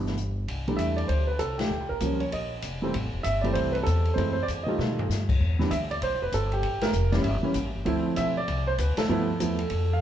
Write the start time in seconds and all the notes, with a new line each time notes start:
Already playing: G1 B2 E3 G3 D4 C5
0.06 snare
0.17 closed hi-hat
0.48 C2, kick, ride
0.68 E3 G3 A3 D4, ride
0.77 E2 E5, kick, hi-hat pedal, ride
0.96 D5, ride
1.08 D2 C5, kick, ride
1.27 B4
1.39 C2 A4, kick, hi-hat pedal, ride
1.58 G4, snare, ride
1.69 D#2
1.80 C#2
1.89 A#1 A#4
2.00 C#2 F3 G3 A#3 C#4, kick, hi-hat pedal, ride
2.20 C#5, ride
2.32 A#1 D#5, kick, ride
2.62 F1, kick, hi-hat pedal, ride
2.82 E3 G3 A3 C4
2.94 A1, kick, ride
3.04 F1
3.13 E1
3.23 G1 E5, kick, hi-hat pedal, ride
3.41 E3 G3 A3 D5, ride
3.46 C4
3.53 C2 C5, kick, ride
3.72 B4, ride
3.83 E2 A4, kick, hi-hat pedal, ride
4.05 ride
4.14 F#2 E3 G#3 A3 C4 C5, kick
4.18 ride
4.33 C5
4.43 D5
4.48 E2, kick, hi-hat pedal, ride
4.63 D#3 D#5
4.68 G3 A3 F4
4.78 B2, snare
4.99 floor tom
5.09 G2, snare, hi-hat pedal
5.29 kick, crash
5.40 E2, kick
5.59 E3 G3 B3 D4, snare
5.71 D2 E5, kick, hi-hat pedal, ride
5.91 D5, ride
6.02 B1 C5, kick, ride
6.12 G1
6.22 E1 B4
6.32 G1 A4, kick, hi-hat pedal, ride
6.52 G4, ride
6.63 A1, kick, ride
6.81 A#4, snare, ride
6.93 F1, hi-hat pedal
7.12 E3 G3 A#3 C#4 D5, snare, ride
7.23 G1 E5, kick, ride
7.43 E3 G3 A#3 C#4, muted upright bass stroke
7.54 A#1, kick, hi-hat pedal, ride
7.66 A1
7.75 G1
7.85 D2 F3 A3 C4 E4, kick, ride
8.16 B1 E5, kick, hi-hat pedal, ride
8.37 D5
8.48 C2, kick, ride
8.67 C5
8.78 D2 B4, kick, hi-hat pedal, ride
8.97 A4, muted upright bass stroke, snare, ride
9.09 G2 F3 A3 B3 E4
9.40 E2 F3 A3 B3 E4, kick, hi-hat pedal, ride
9.59 ride
9.70 F2, kick, ride
9.93 F5